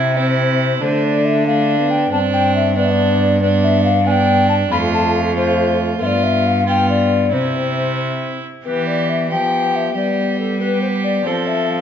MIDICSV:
0, 0, Header, 1, 5, 480
1, 0, Start_track
1, 0, Tempo, 432900
1, 910, Time_signature, 6, 3, 24, 8
1, 6666, Tempo, 437318
1, 13030, End_track
2, 0, Start_track
2, 0, Title_t, "Recorder"
2, 0, Program_c, 0, 74
2, 0, Note_on_c, 0, 76, 96
2, 189, Note_on_c, 0, 72, 88
2, 205, Note_off_c, 0, 76, 0
2, 903, Note_off_c, 0, 72, 0
2, 910, Note_on_c, 0, 72, 87
2, 1157, Note_on_c, 0, 74, 82
2, 1173, Note_off_c, 0, 72, 0
2, 1390, Note_on_c, 0, 76, 97
2, 1406, Note_off_c, 0, 74, 0
2, 1622, Note_off_c, 0, 76, 0
2, 1629, Note_on_c, 0, 77, 102
2, 2115, Note_on_c, 0, 79, 92
2, 2132, Note_off_c, 0, 77, 0
2, 2345, Note_off_c, 0, 79, 0
2, 2352, Note_on_c, 0, 81, 91
2, 2419, Note_off_c, 0, 81, 0
2, 2585, Note_on_c, 0, 79, 94
2, 2824, Note_off_c, 0, 79, 0
2, 2833, Note_on_c, 0, 76, 97
2, 3072, Note_on_c, 0, 74, 90
2, 3089, Note_off_c, 0, 76, 0
2, 3153, Note_on_c, 0, 76, 75
2, 3170, Note_off_c, 0, 74, 0
2, 3220, Note_on_c, 0, 74, 82
2, 3237, Note_off_c, 0, 76, 0
2, 3789, Note_off_c, 0, 74, 0
2, 3796, Note_on_c, 0, 74, 80
2, 3863, Note_off_c, 0, 74, 0
2, 4033, Note_on_c, 0, 76, 93
2, 4256, Note_off_c, 0, 76, 0
2, 4262, Note_on_c, 0, 77, 107
2, 4513, Note_on_c, 0, 80, 89
2, 4530, Note_off_c, 0, 77, 0
2, 4564, Note_on_c, 0, 79, 96
2, 4575, Note_off_c, 0, 80, 0
2, 4973, Note_off_c, 0, 79, 0
2, 4980, Note_on_c, 0, 81, 95
2, 5046, Note_off_c, 0, 81, 0
2, 5227, Note_on_c, 0, 83, 93
2, 5294, Note_off_c, 0, 83, 0
2, 5470, Note_on_c, 0, 81, 86
2, 5699, Note_off_c, 0, 81, 0
2, 5706, Note_on_c, 0, 77, 95
2, 5772, Note_off_c, 0, 77, 0
2, 5951, Note_on_c, 0, 72, 94
2, 6408, Note_off_c, 0, 72, 0
2, 6670, Note_on_c, 0, 76, 81
2, 6718, Note_on_c, 0, 74, 88
2, 6729, Note_off_c, 0, 76, 0
2, 6911, Note_on_c, 0, 76, 86
2, 6927, Note_off_c, 0, 74, 0
2, 7159, Note_on_c, 0, 77, 90
2, 7175, Note_off_c, 0, 76, 0
2, 7392, Note_off_c, 0, 77, 0
2, 7406, Note_on_c, 0, 79, 96
2, 7629, Note_off_c, 0, 79, 0
2, 7635, Note_on_c, 0, 74, 77
2, 8113, Note_on_c, 0, 72, 68
2, 8129, Note_off_c, 0, 74, 0
2, 8842, Note_off_c, 0, 72, 0
2, 9564, Note_on_c, 0, 71, 65
2, 9804, Note_on_c, 0, 74, 68
2, 9821, Note_off_c, 0, 71, 0
2, 10045, Note_on_c, 0, 76, 67
2, 10061, Note_off_c, 0, 74, 0
2, 10280, Note_off_c, 0, 76, 0
2, 10287, Note_on_c, 0, 79, 81
2, 10777, Note_on_c, 0, 76, 70
2, 10793, Note_off_c, 0, 79, 0
2, 10999, Note_off_c, 0, 76, 0
2, 11005, Note_on_c, 0, 74, 69
2, 11471, Note_off_c, 0, 74, 0
2, 11477, Note_on_c, 0, 69, 68
2, 11713, Note_on_c, 0, 71, 68
2, 11729, Note_off_c, 0, 69, 0
2, 11932, Note_off_c, 0, 71, 0
2, 11939, Note_on_c, 0, 72, 68
2, 12005, Note_off_c, 0, 72, 0
2, 12183, Note_on_c, 0, 74, 68
2, 12422, Note_on_c, 0, 72, 69
2, 12438, Note_off_c, 0, 74, 0
2, 12658, Note_on_c, 0, 76, 76
2, 12674, Note_off_c, 0, 72, 0
2, 12904, Note_on_c, 0, 77, 70
2, 12920, Note_off_c, 0, 76, 0
2, 13030, Note_off_c, 0, 77, 0
2, 13030, End_track
3, 0, Start_track
3, 0, Title_t, "Violin"
3, 0, Program_c, 1, 40
3, 0, Note_on_c, 1, 64, 71
3, 183, Note_off_c, 1, 64, 0
3, 190, Note_on_c, 1, 64, 67
3, 908, Note_on_c, 1, 62, 67
3, 924, Note_off_c, 1, 64, 0
3, 1627, Note_off_c, 1, 62, 0
3, 1633, Note_on_c, 1, 62, 67
3, 2339, Note_off_c, 1, 62, 0
3, 2348, Note_on_c, 1, 62, 74
3, 3056, Note_off_c, 1, 62, 0
3, 3068, Note_on_c, 1, 62, 74
3, 3775, Note_off_c, 1, 62, 0
3, 3804, Note_on_c, 1, 62, 71
3, 4502, Note_off_c, 1, 62, 0
3, 4510, Note_on_c, 1, 62, 77
3, 5233, Note_on_c, 1, 65, 63
3, 5250, Note_off_c, 1, 62, 0
3, 5942, Note_off_c, 1, 65, 0
3, 5948, Note_on_c, 1, 65, 67
3, 6654, Note_off_c, 1, 65, 0
3, 6674, Note_on_c, 1, 65, 70
3, 7375, Note_off_c, 1, 65, 0
3, 7381, Note_on_c, 1, 65, 61
3, 8095, Note_off_c, 1, 65, 0
3, 8111, Note_on_c, 1, 64, 63
3, 9321, Note_off_c, 1, 64, 0
3, 9574, Note_on_c, 1, 67, 56
3, 10245, Note_off_c, 1, 67, 0
3, 10285, Note_on_c, 1, 67, 50
3, 10981, Note_off_c, 1, 67, 0
3, 10987, Note_on_c, 1, 67, 54
3, 11696, Note_off_c, 1, 67, 0
3, 11708, Note_on_c, 1, 67, 58
3, 12436, Note_on_c, 1, 69, 54
3, 12452, Note_off_c, 1, 67, 0
3, 13030, Note_off_c, 1, 69, 0
3, 13030, End_track
4, 0, Start_track
4, 0, Title_t, "Trombone"
4, 0, Program_c, 2, 57
4, 0, Note_on_c, 2, 60, 64
4, 171, Note_off_c, 2, 60, 0
4, 186, Note_on_c, 2, 60, 67
4, 895, Note_off_c, 2, 60, 0
4, 906, Note_on_c, 2, 57, 65
4, 1616, Note_off_c, 2, 57, 0
4, 1628, Note_on_c, 2, 57, 73
4, 1984, Note_off_c, 2, 57, 0
4, 1991, Note_on_c, 2, 59, 60
4, 2348, Note_on_c, 2, 60, 73
4, 2365, Note_off_c, 2, 59, 0
4, 3060, Note_off_c, 2, 60, 0
4, 3066, Note_on_c, 2, 59, 76
4, 3774, Note_off_c, 2, 59, 0
4, 3790, Note_on_c, 2, 59, 72
4, 4325, Note_off_c, 2, 59, 0
4, 4514, Note_on_c, 2, 59, 77
4, 4970, Note_off_c, 2, 59, 0
4, 5231, Note_on_c, 2, 57, 74
4, 5904, Note_off_c, 2, 57, 0
4, 5944, Note_on_c, 2, 57, 69
4, 6663, Note_on_c, 2, 59, 67
4, 6680, Note_off_c, 2, 57, 0
4, 7377, Note_off_c, 2, 59, 0
4, 7383, Note_on_c, 2, 59, 65
4, 8096, Note_off_c, 2, 59, 0
4, 8108, Note_on_c, 2, 60, 65
4, 9300, Note_off_c, 2, 60, 0
4, 9563, Note_on_c, 2, 59, 59
4, 10239, Note_off_c, 2, 59, 0
4, 10283, Note_on_c, 2, 59, 61
4, 10984, Note_off_c, 2, 59, 0
4, 10990, Note_on_c, 2, 59, 55
4, 11697, Note_off_c, 2, 59, 0
4, 11709, Note_on_c, 2, 59, 57
4, 12414, Note_off_c, 2, 59, 0
4, 12431, Note_on_c, 2, 60, 56
4, 13030, Note_off_c, 2, 60, 0
4, 13030, End_track
5, 0, Start_track
5, 0, Title_t, "Cello"
5, 0, Program_c, 3, 42
5, 0, Note_on_c, 3, 48, 74
5, 882, Note_off_c, 3, 48, 0
5, 910, Note_on_c, 3, 50, 75
5, 2324, Note_off_c, 3, 50, 0
5, 2346, Note_on_c, 3, 43, 80
5, 5181, Note_off_c, 3, 43, 0
5, 5224, Note_on_c, 3, 41, 75
5, 6636, Note_off_c, 3, 41, 0
5, 6669, Note_on_c, 3, 43, 75
5, 8110, Note_on_c, 3, 48, 65
5, 8127, Note_off_c, 3, 43, 0
5, 9345, Note_off_c, 3, 48, 0
5, 9570, Note_on_c, 3, 52, 60
5, 10290, Note_on_c, 3, 53, 53
5, 10306, Note_off_c, 3, 52, 0
5, 10995, Note_off_c, 3, 53, 0
5, 11002, Note_on_c, 3, 55, 59
5, 12404, Note_off_c, 3, 55, 0
5, 12433, Note_on_c, 3, 53, 62
5, 13030, Note_off_c, 3, 53, 0
5, 13030, End_track
0, 0, End_of_file